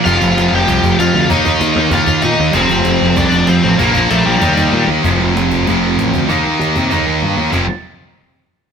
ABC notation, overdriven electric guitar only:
X:1
M:4/4
L:1/8
Q:1/4=193
K:Eblyd
V:1 name="Overdriven electric guitar"
[Ff]3 [Gg]3 [Ff]2 | [Ee]4 [Ff]2 [Ee]2 | [Cc]4 [Dd]2 [Cc] [Cc] | [B,B] [B,B] [A,A] [G,G]4 z |
z8 | z8 | z8 |]